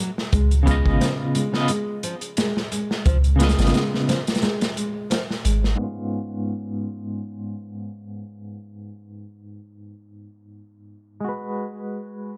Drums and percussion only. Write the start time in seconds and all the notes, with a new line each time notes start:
0.18 snare
0.33 kick, closed hi-hat
0.51 closed hi-hat
0.67 kick, closed hi-hat
0.86 kick
1.01 snare, closed hi-hat
1.35 closed hi-hat
1.54 snare
1.68 closed hi-hat
2.03 closed hi-hat
2.21 closed hi-hat
2.37 snare, closed hi-hat
2.57 snare
2.72 closed hi-hat
2.91 snare
3.06 kick, closed hi-hat
3.24 closed hi-hat
3.40 snare, closed hi-hat
3.49 snare, closed hi-hat
3.59 snare, closed hi-hat
3.67 snare, closed hi-hat
3.74 snare, closed hi-hat
3.94 snare
4.09 snare, closed hi-hat
4.27 snare, closed hi-hat
4.35 snare, closed hi-hat
4.42 snare, closed hi-hat
4.61 snare, closed hi-hat
4.77 closed hi-hat
5.11 snare, closed hi-hat
5.30 snare
5.45 closed hi-hat
5.64 snare